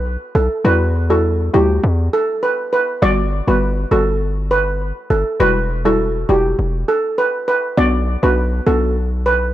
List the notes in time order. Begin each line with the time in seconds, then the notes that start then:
Already playing: B1
0.35 B1 A4
0.64 E2 G3 E4 F#4 B4
1.10 G3 E4 F#4 A4
1.54 D2 G3 E4 F#4 G4
1.84 E2
2.13 A4
2.43 B4
2.73 B4
3.02 G1 G3 B3 F#4 D5
3.47 G1 G3 B3 F#4 B4
3.91 G1 G3 B3 F#4 A4
4.51 B4
5.10 G1 A4
5.40 E1 G3 E4 F#4 B4
5.85 G3 E4 F#4 A4
6.29 E1 G3 E4 F#4 G4
6.59 E1
6.88 A4
7.18 B4
7.48 B4
7.77 B1 B3 D4 F#4 D5
8.23 B1 B3 D4 F#4 B4
8.67 B1 B3 D4 F#4 A4
9.26 B4